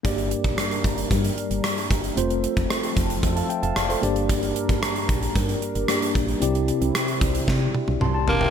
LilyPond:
<<
  \new Staff \with { instrumentName = "Tine electric piano" } { \time 4/4 \key g \dorian \tempo 4 = 113 << { r1 | r2 r16 <f'' a''>16 <e'' g''>16 <f'' a''>16 <d'' f''>16 <a' c''>8 r16 | r1 | r2. <a'' c'''>16 a''8 <e'' g''>16 | } \\ { <bes d' g' d''>1 | <a c' f' c''>2.~ <a c' f' c''>8 <bes d' g' d''>8~ | <bes d' g' d''>2. <bes d' g' d''>4 | <c' e' g' d''>2.~ <c' e' g' d''>8 r8 | } >> }
  \new Staff \with { instrumentName = "Tine electric piano" } { \clef bass \time 4/4 \key g \dorian g,4. r2 r8 | r2. r8 g,8~ | g,4 r2. | c4. r2 r8 | }
  \new Staff \with { instrumentName = "Analog synth pad" } { \time 4/4 \key g \dorian << { <g bes'>1 | <f a'>2.~ <f a'>8 <g bes'>8~ | <g bes'>1 | <c' e'>1 | } \\ { d'1 | c'2.~ c'8 d'8~ | d'1~ | d'1 | } >> }
  \new Staff \with { instrumentName = "Tenor saxophone" } { \time 4/4 \key g \dorian r1 | r1 | r1 | r2. r8 bes8 | }
  \new Staff \with { instrumentName = "FM bass" } { \clef bass \time 4/4 \key g \dorian g,,8. bes,,16 r8 g,,8 g,8 r16 g,,16 r8 g,,8 | f,,8. f,,16 r8 f,,8 f,8 r16 f,,16 f,,8 g,,8~ | g,,8. g,,16 r8 bes,,8 g,8 r16 g,,16 r8 bes,,8 | c,8. c,16 r8 c,8 c8 r16 c,16 c,8 f,,8 | }
  \new DrumStaff \with { instrumentName = "Drums" } \drummode { \time 4/4 <hh bd>16 hh16 hh16 <hh bd>16 <hh ss>16 hh16 <hh bd>16 hh16 <hh bd>16 hh16 hh16 hh16 <hh ss>16 hh16 <hh bd>16 hh16 | hh16 hh16 hh16 <hh bd>16 <hh ss>16 hh16 <hh bd>16 hh16 <hh bd>16 hh16 hh16 hh16 <hh ss>16 hh16 hh16 hh16 | <hh bd>16 hh16 hh16 <hh bd>16 <hh ss>16 hh16 <hh bd>16 hh16 <hh bd>16 hh16 hh16 hh16 <hh ss>16 hh16 <hh bd>16 hh16 | hh16 hh16 hh16 hh16 <hh ss>16 hh16 <hh bd>16 hh16 <bd sn>8 tommh16 tommh16 toml8 tomfh16 tomfh16 | }
>>